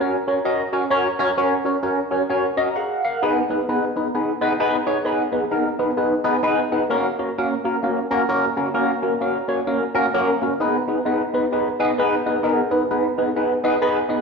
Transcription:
0.01 C#4 F#4 A#4 C#5
0.27 C#4 F#4 A#4 C#5
0.45 C#4 F#4 A#4 D#5
0.72 C#4 F#4 A#4 C#5
0.90 C#4 F#4 A#4 C#5
1.19 C#4 F#4 A#4 C#5
1.37 C#4 F#4 A#4 C#5
1.65 C#4 F#4 A#4 C#5
1.83 C#4 F#4 A#4 C#5
2.11 C#4 F#4 A#4 C#5
2.29 C#4 F#4 A#4 C#5
2.57 C#4 F#4 A#4 D#5 A#5
2.76 G#4 F5 F#5
3.04 A#4 F5 F#5
3.22 B3 D#4 G#4 B4
3.50 B3 D#4 G#4 B4
3.69 B3 D#4 G#4 B4
3.96 B3 D#4 G#4 B4
4.15 B3 D#4 G#4 B4
4.41 B3 D#4 G#4 B4
4.60 B3 D#4 G#4 B4
4.86 B3 D#4 G#4 C#5
5.05 B3 D#4 G#4 B4
5.32 B3 D#4 G#4 B4
5.51 B3 D#4 G#4 A#4
5.79 B3 D#4 G#4 B4
5.97 B3 D#4 G#4 B4
6.24 B3 D#4 G#4 B4
6.43 B3 D#4 G#4 B4
6.72 B3 D#4 G#4 B4
6.90 A#3 C#4 F#4 A#4
7.19 A#3 C#4 F#4 A#4
7.38 A#3 C#4 F#4 A#4
7.65 A#3 C#4 F#4 A#4
7.83 A#3 C#4 F#4 A#4
8.11 A#3 C#4 F#4 A#4
8.29 A#3 C#4 F#4 A#4
8.57 A#3 C#4 F#4 A#4
8.74 A#3 C#4 F#4 A#4
9.02 A#3 C#4 F#4 A#4
9.21 A#3 C#4 F#4 A#4
9.48 A#3 C#4 F#4 C#5
9.67 A#3 C#4 F#4 A#4
9.95 A#3 C#4 F#4 A#4
10.14 A#3 C#4 F#4 A#4
10.42 A#3 C#4 F#4 A#4
10.60 B3 D#4 G#4 B4
10.88 B3 D#4 G#4 B4
11.05 B3 D#4 G#4 B4
11.34 B3 D#4 G#4 B4
11.52 B3 D#4 G#4 B4
11.79 B3 D#4 G#4 B4
11.98 B3 D#4 G#4 B4
12.26 B3 D#4 G#4 B4
12.43 B3 D#4 G#4 A#4
12.71 B3 D#4 G#4 B4
12.91 B3 D#4 G#4 B4
13.18 B3 D#4 G#4 B4
13.36 B3 D#4 G#4 B4
13.64 B3 D#4 G#4 B4
13.81 B3 D#4 G#4 B4
14.09 B3 D#4 G#4 B4

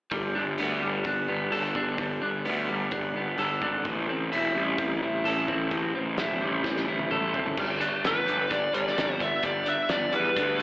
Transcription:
0.11 G1 G3, kick, open hi-hat
0.35 G1 D4
0.58 D2 B3, open hi-hat
0.82 G1 G3
1.04 G1 D4, kick, open hi-hat
1.28 G1 B3
1.52 G1 A4, open hi-hat
1.75 G1 D4, kick
1.98 G1 G3, kick, open hi-hat
2.22 G1 D4
2.45 D2 B3, open hi-hat
2.69 G1 G3
2.91 G1 D4, kick, open hi-hat
3.15 G1 B3
3.38 G1 A4, open hi-hat
3.62 G#1 D4, kick
3.85 A1 A2, kick, open hi-hat
4.09 A1 C4
4.32 E1 E4, open hi-hat
4.55 A1 G3
4.78 A1 C4, kick, open hi-hat
5.02 A1 E4
5.25 A1 A4, open hi-hat
5.48 A1 C4, kick
5.71 A1 A2, kick, open hi-hat
5.94 A1 C4
6.18 E1 E4, snare, open hi-hat
6.41 A1 G3
6.64 A1 C4, kick, snare
6.76 snare
6.87 A1 E4
6.99 high tom
7.10 A1 A4, mid tom
7.34 F#1 C4, floor tom
7.46 floor tom
7.57 G1 G3, kick, crash
7.80 D4, closed hi-hat
8.04 G1 B3 B4, snare, closed hi-hat
8.26 G1 G3, closed hi-hat
8.50 G1 D4 D5, kick, closed hi-hat
8.74 G1 G3 D5, closed hi-hat
8.87 snare
8.96 G1 D4, snare, closed hi-hat
9.20 B3 E5, kick, closed hi-hat
9.43 G1 G3 D5, kick, closed hi-hat
9.66 D4 E5, closed hi-hat
9.89 G1 B3 D5, snare, closed hi-hat
10.12 E2 G3 B4, closed hi-hat
10.36 D2 D4, kick, closed hi-hat
10.59 G3

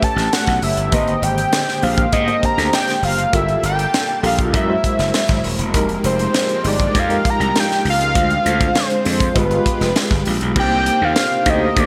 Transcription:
Already playing: A3 C#4 G4 B4
0.03 A5, kick, closed hi-hat
0.16 A1, snare, closed hi-hat
0.33 F#5, snare, closed hi-hat
0.46 B1, kick, snare, closed hi-hat
0.62 F#1 E5, open hi-hat
0.77 G1, closed hi-hat
0.92 G#1 D3 G#3 A#3 C4 G4 B4 D#5, kick, closed hi-hat
1.07 closed hi-hat
1.22 G#1 G5, closed hi-hat
1.38 closed hi-hat
1.53 snare, closed hi-hat
1.68 snare
1.82 A#1 A#3 D4 G4 C5 F5, open hi-hat
1.98 kick, closed hi-hat
2.12 G#2 D#5, kick, closed hi-hat
2.27 A#3 D4 G4 C5, closed hi-hat
2.43 A#5, kick, closed hi-hat
2.58 D2, snare, closed hi-hat
2.73 G5, snare, closed hi-hat
2.88 snare, closed hi-hat
3.02 F#1 F5, open hi-hat
3.19 closed hi-hat
3.33 G1 G3 A#3 F4 G4 A4 A#4 E5 A5, kick, closed hi-hat
3.48 closed hi-hat
3.63 G1 G5, closed hi-hat
3.79 closed hi-hat
3.94 snare, closed hi-hat
4.23 A#1 F4 G4 A4 A#4 F5, open hi-hat
4.39 kick, closed hi-hat
4.54 F#2 F#3 G#3 E4 F#4 A#4 E5, kick, closed hi-hat
4.68 G#3 E4 F#4 C5
4.84 kick, closed hi-hat
4.99 F#1, snare, closed hi-hat
5.14 snare, closed hi-hat
5.28 G#1, kick, snare, closed hi-hat
5.44 D#1, open hi-hat
5.58 E1, closed hi-hat
5.73 F1 F3 G#3 D#4 G4 A#4, kick, closed hi-hat
5.89 closed hi-hat
6.04 F1 C5, closed hi-hat
6.19 closed hi-hat
6.34 snare, closed hi-hat
6.49 closed hi-hat
6.63 G1 G#3 D#4 G4 A#4, open hi-hat
6.68 D5
6.80 kick, closed hi-hat
6.95 F2, kick, closed hi-hat
6.99 F5
7.08 G#3 D#4 G4 A#4, closed hi-hat
7.25 kick, closed hi-hat
7.30 A#5
7.40 C2, closed hi-hat
7.56 G5, snare, closed hi-hat
7.70 snare, closed hi-hat
7.85 C#2, open hi-hat
7.90 F5
8.01 closed hi-hat
8.14 D2 D3 G#3 C4 D4 F4 C5, kick, closed hi-hat
8.30 closed hi-hat
8.46 D2, closed hi-hat
8.61 kick, closed hi-hat
8.75 C5, snare, closed hi-hat
8.90 closed hi-hat
9.04 F2 G#3 D4 F4 C5, open hi-hat
9.20 kick, closed hi-hat
9.34 G1 G#3 F4 G4 B4, kick, closed hi-hat
9.39 B4
9.50 G#3 F4 G4 B4, closed hi-hat
9.66 kick, closed hi-hat
9.81 F1, snare, closed hi-hat
9.96 snare, closed hi-hat
10.11 G1, kick, snare
10.25 A#1, open hi-hat
10.41 B1, closed hi-hat
10.56 C2 C3 A#3 C4 D4 D#4 G4 B4 G5, kick, crash
10.63 C5
10.86 closed hi-hat
11.02 D#2 F5
11.16 snare, closed hi-hat
11.46 D2 A#3 C4 D#4 G4 C5 D#5, kick, closed hi-hat
11.76 D2 D5, kick, closed hi-hat

